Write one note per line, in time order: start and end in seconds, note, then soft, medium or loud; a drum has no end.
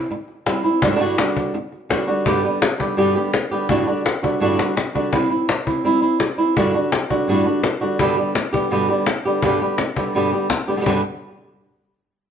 0.00 0.10 E4 soft
0.11 muted nylon-string guitar stroke medium
0.11 cajon slap soft
0.28 cajon slap soft
0.46 0.64 G3 medium
0.46 0.64 C4 medium
0.46 0.63 E4 medium
0.46 cajon slap medium
0.64 0.83 C4 soft
0.64 0.82 E4 medium
0.82 0.99 G2 medium
0.82 0.89 A2 medium
0.82 0.90 D3 medium
0.82 0.90 G3 medium
0.82 0.91 D4 medium
0.82 0.91 F#4 medium
0.82 cajon bass loud
0.91 0.94 A2 medium
0.91 0.95 D3 medium
0.91 0.95 G3 medium
0.91 0.95 D4 soft
0.91 0.95 F#4 soft
0.95 0.99 A2 medium
0.95 0.99 D3 medium
0.95 0.99 G3 medium
0.95 1.00 D4 medium
0.95 1.00 F#4 medium
1.00 1.18 G2 medium
1.00 1.18 A2 medium
1.00 1.18 D3 medium
1.00 1.18 G3 medium
1.00 1.18 D4 medium
1.00 1.17 F#4 medium
1.00 cajon slap soft
1.18 1.53 D3 soft
1.18 1.53 G3 soft
1.18 1.54 D4 soft
1.18 1.54 F#4 medium
1.18 cajon slap loud
1.36 cajon bass medium
1.54 muted nylon-string guitar stroke medium
1.54 cajon slap soft
1.72 cajon slap soft
1.89 2.07 D3 medium
1.89 2.07 G3 medium
1.89 2.07 D4 medium
1.89 2.06 F#4 medium
1.89 cajon bass medium
1.89 cajon slap loud
2.08 2.25 D3 soft
2.08 2.25 G3 medium
2.08 2.25 D4 medium
2.08 2.25 F#4 medium
2.25 2.43 G2 medium
2.25 2.43 B2 medium
2.25 2.44 D3 medium
2.25 2.44 G3 medium
2.25 2.43 B3 medium
2.25 2.43 G4 medium
2.25 cajon bass medium
2.44 2.61 D3 medium
2.44 2.61 G3 soft
2.44 2.61 B3 medium
2.44 2.61 G4 soft
2.62 muted nylon-string guitar stroke medium
2.62 cajon slap loud
2.79 2.97 D3 soft
2.79 2.97 G3 soft
2.79 2.97 B3 medium
2.79 2.97 G4 medium
2.79 cajon bass medium
2.97 3.15 G2 medium
2.97 3.15 B2 medium
2.97 3.15 D3 medium
2.97 3.15 G3 medium
2.97 3.15 B3 medium
2.97 3.14 G4 medium
3.16 3.32 D3 soft
3.16 3.32 G3 soft
3.16 3.33 B3 medium
3.16 3.33 G4 medium
3.33 muted nylon-string guitar stroke medium
3.33 cajon slap loud
3.51 3.69 D3 soft
3.51 3.69 G3 medium
3.51 3.69 B3 medium
3.51 3.69 G4 medium
3.69 3.87 G2 medium
3.69 3.87 A2 medium
3.69 3.87 D3 medium
3.69 3.87 G3 medium
3.69 3.86 D4 medium
3.69 3.86 F#4 medium
3.69 cajon bass medium
3.87 4.04 D3 soft
3.87 4.04 G3 soft
3.87 4.04 D4 soft
3.87 4.04 F#4 medium
3.87 cajon slap soft
4.05 muted nylon-string guitar stroke medium
4.05 cajon slap loud
4.23 4.40 D3 soft
4.23 4.40 G3 soft
4.23 4.41 D4 soft
4.23 4.41 F#4 medium
4.23 cajon bass medium
4.40 4.58 G2 medium
4.40 4.58 A2 medium
4.40 4.59 D3 medium
4.40 4.59 G3 medium
4.40 4.58 D4 medium
4.40 4.57 F#4 loud
4.40 cajon slap soft
4.59 4.75 D3 soft
4.59 4.76 G3 soft
4.59 4.76 D4 soft
4.59 4.76 F#4 medium
4.59 cajon slap medium
4.76 muted nylon-string guitar stroke medium
4.76 cajon slap loud
4.95 5.13 D3 medium
4.95 5.11 G3 medium
4.95 5.13 D4 medium
4.95 5.12 F#4 medium
4.95 cajon bass medium
5.12 5.30 G3 medium
5.12 5.31 C4 medium
5.12 5.29 E4 medium
5.12 cajon bass medium
5.30 5.48 C4 soft
5.30 5.48 E4 medium
5.49 muted nylon-string guitar stroke medium
5.49 cajon slap loud
5.67 5.84 C4 soft
5.67 5.84 E4 soft
5.67 cajon bass medium
5.84 6.02 G3 medium
5.84 6.02 C4 medium
5.84 6.01 E4 medium
5.84 cajon slap soft
6.02 6.19 C4 soft
6.02 6.19 E4 medium
6.20 muted nylon-string guitar stroke medium
6.20 cajon slap medium
6.38 6.56 C4 soft
6.38 6.55 E4 medium
6.56 6.74 G2 medium
6.56 6.74 A2 medium
6.56 6.74 D3 medium
6.56 6.74 G3 medium
6.56 6.74 D4 medium
6.56 6.73 F#4 medium
6.56 cajon bass medium
6.74 6.92 D3 soft
6.74 6.92 G3 soft
6.74 6.92 D4 medium
6.74 6.91 F#4 medium
6.92 muted nylon-string guitar stroke medium
6.92 cajon slap loud
7.10 7.28 D3 soft
7.10 7.28 G3 soft
7.10 7.28 D4 medium
7.10 7.27 F#4 medium
7.10 cajon bass medium
7.28 7.45 G2 medium
7.28 7.45 A2 medium
7.28 7.46 D3 medium
7.28 7.46 G3 medium
7.28 7.45 D4 loud
7.28 7.45 F#4 medium
7.28 cajon slap soft
7.46 7.62 D3 soft
7.46 7.62 G3 soft
7.46 7.63 D4 medium
7.46 7.63 F#4 medium
7.63 muted nylon-string guitar stroke medium
7.63 cajon slap loud
7.81 7.98 D3 medium
7.81 7.99 G3 medium
7.81 7.99 D4 medium
7.81 7.99 F#4 medium
7.99 8.17 G2 medium
7.99 8.17 B2 medium
7.99 8.17 D3 medium
7.99 8.17 G3 medium
7.99 8.17 B3 medium
7.99 8.16 G4 medium
7.99 cajon bass medium
8.17 8.35 D3 soft
8.17 8.35 G3 soft
8.17 8.35 B3 soft
8.17 8.34 G4 medium
8.35 muted nylon-string guitar stroke medium
8.35 cajon slap loud
8.53 8.70 D3 soft
8.53 8.71 G3 medium
8.53 8.71 B3 medium
8.53 8.70 G4 medium
8.53 cajon bass medium
8.71 8.88 G2 medium
8.71 8.88 B2 medium
8.71 8.88 D3 medium
8.71 8.89 G3 medium
8.71 8.89 B3 loud
8.71 8.88 G4 medium
8.89 9.06 D3 soft
8.89 9.06 G3 medium
8.89 9.06 B3 medium
8.89 9.06 G4 medium
8.89 cajon slap soft
9.06 muted nylon-string guitar stroke medium
9.06 cajon slap medium
9.25 9.43 D3 soft
9.25 9.43 G3 medium
9.25 9.43 B3 medium
9.25 9.42 G4 medium
9.42 9.60 G2 medium
9.42 9.60 B2 medium
9.42 9.61 D3 medium
9.42 9.61 G3 medium
9.42 9.61 B3 medium
9.42 9.60 G4 medium
9.42 cajon bass medium
9.61 9.79 D3 soft
9.61 9.79 G3 soft
9.61 9.78 B3 medium
9.61 9.78 G4 medium
9.61 cajon slap soft
9.78 muted nylon-string guitar stroke medium
9.78 cajon slap loud
9.96 10.14 D3 soft
9.96 10.14 G3 soft
9.96 10.14 B3 soft
9.96 10.14 G4 medium
9.96 cajon bass medium
10.14 10.31 G2 medium
10.14 10.32 B2 medium
10.14 10.32 D3 medium
10.14 10.32 G3 medium
10.14 10.32 B3 medium
10.14 10.31 G4 medium
10.32 10.49 D3 soft
10.32 10.49 G3 soft
10.32 10.49 B3 medium
10.32 10.49 G4 medium
10.32 cajon slap soft
10.50 muted nylon-string guitar stroke medium
10.50 cajon bass medium
10.50 cajon slap loud
10.68 10.75 D3 soft
10.68 10.76 G3 medium
10.68 10.76 B3 medium
10.68 10.77 G4 medium
10.76 10.80 B2 soft
10.76 10.80 D3 medium
10.76 10.80 G3 medium
10.76 10.80 B3 medium
10.76 10.81 G4 medium
10.81 10.85 B2 medium
10.81 10.85 D3 medium
10.81 10.85 G3 medium
10.81 10.85 B3 medium
10.81 10.85 G4 medium
10.86 11.00 G2 medium
10.86 11.00 B2 medium
10.86 11.00 D3 medium
10.86 11.00 G3 medium
10.86 11.00 B3 medium
10.86 11.00 G4 medium
10.86 cajon bass medium